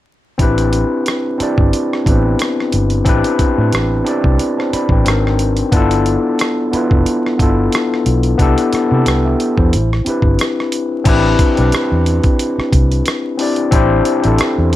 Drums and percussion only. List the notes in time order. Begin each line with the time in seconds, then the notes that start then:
0.39 kick, closed hi-hat
0.58 closed hi-hat
0.73 closed hi-hat
1.06 cross-stick, closed hi-hat
1.40 closed hi-hat
1.58 kick
1.73 closed hi-hat
1.93 cross-stick
2.06 kick, closed hi-hat
2.39 cross-stick, closed hi-hat
2.60 cross-stick
2.72 closed hi-hat
2.90 closed hi-hat
3.06 kick, closed hi-hat
3.24 closed hi-hat
3.39 kick, closed hi-hat
3.73 cross-stick, closed hi-hat
4.07 closed hi-hat
4.24 kick
4.39 closed hi-hat
4.60 cross-stick
4.73 closed hi-hat
4.89 kick
5.06 cross-stick, closed hi-hat
5.27 cross-stick
5.39 closed hi-hat
5.57 closed hi-hat
5.72 kick, closed hi-hat
5.91 closed hi-hat
6.06 closed hi-hat
6.39 cross-stick, closed hi-hat
6.73 closed hi-hat
6.91 kick
7.06 closed hi-hat
7.26 cross-stick
7.39 kick, closed hi-hat
7.72 cross-stick, closed hi-hat
7.94 cross-stick
8.06 closed hi-hat
8.23 closed hi-hat
8.39 kick, closed hi-hat
8.58 closed hi-hat
8.73 cross-stick, closed hi-hat
9.06 cross-stick, closed hi-hat
9.40 closed hi-hat
9.58 kick
9.73 closed hi-hat
9.93 cross-stick
10.06 closed hi-hat
10.22 kick
10.39 cross-stick, closed hi-hat
10.60 cross-stick
10.72 closed hi-hat
11.05 kick, closed hi-hat, crash
11.39 kick, closed hi-hat
11.57 closed hi-hat
11.72 cross-stick, closed hi-hat
12.06 closed hi-hat
12.23 kick, closed hi-hat
12.39 closed hi-hat
12.60 cross-stick
12.73 kick, closed hi-hat
12.92 closed hi-hat
13.06 cross-stick, closed hi-hat
13.39 open hi-hat
13.56 closed hi-hat
13.72 kick, closed hi-hat
14.05 closed hi-hat
14.24 closed hi-hat
14.38 cross-stick, closed hi-hat
14.73 closed hi-hat